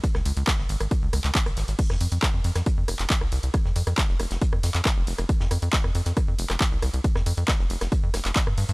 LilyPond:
<<
  \new Staff \with { instrumentName = "Analog synth bass" } { \clef bass \time 4/4 \key f \minor \tempo 4 = 137 r16 des,16 des,16 des,16 r16 aes,,16 aes,,16 aes,,16 r16 des,16 des,16 des,16 r16 aes,,16 aes,,16 aes,,16 | r16 f,16 f,16 f,16 r16 f,16 f,16 f,16 r16 f,16 f,,16 f,,16 r16 c,16 c,16 c,16 | r16 f,16 f,16 f,16 r16 f,,16 f,,16 f,,16 r16 f,16 f,16 f,16 r16 f,,16 f,,16 f,,16 | r16 f,16 f,16 f,16 r16 f,16 f,16 f,16 r16 f,16 f,,16 f,,16 r16 c,16 c,16 c,16 |
r16 f,16 f,16 f,16 r16 f,,16 f,,16 f,,16 r16 f,16 f,,16 f,,16 r16 g,16 g,16 g,16 | }
  \new DrumStaff \with { instrumentName = "Drums" } \drummode { \time 4/4 <hh bd cymr>16 <ss sn>16 <hh hho cymr>16 hh16 <hc hh bd cymr ss sn>16 sn16 <hh hho cymr>16 <hh ss>16 <hh bd cymr>8 <hh hho cymr ss>16 <hc hh sn>16 <hc hh bd cymr>16 <hh ss>16 <hho cymr sn>16 hh16 | <cymc hh bd cymr>16 <ss sn>16 <hh hho cymr>16 hh16 <hc hh bd cymr ss sn>8 <hh hho cymr>16 <hh ss sn>16 <hh bd cymr>8 <hh hho cymr ss>16 <hc hh>16 <hc hh bd cymr sn>16 <hh ss>16 <hh hho cymr>16 hh16 | <hh bd cymr ss>16 sn16 <hh hho cymr>16 <hh ss>16 <hc hh bd cymr sn>16 sn16 <hh hho cymr ss>16 <hh sn>16 <hh bd cymr>16 ss16 <hh hho cymr sn>16 <hc hh sn>16 <hc hh bd cymr ss sn>8 <hho cymr>16 <hh ss>16 | <hh bd cymr>16 sn16 <hh hho cymr ss>16 hh16 <hc hh bd cymr sn>16 ss16 <hh hho cymr>16 <hh sn>16 <hh bd cymr ss>8 <hh hho cymr>16 <hc hh ss>16 <hc hh bd cymr sn>16 hh16 <hh hho cymr ss>16 hh16 |
<hh bd cymr>16 <ss sn>16 <hh hho cymr>16 hh16 <hc hh bd cymr ss sn>16 sn16 <hh hho cymr>16 <hh ss sn>16 <hh bd cymr>8 <hh hho cymr ss sn>16 <hc hh sn>16 <hc hh bd cymr sn>16 ss16 <hho cymr>16 hh16 | }
>>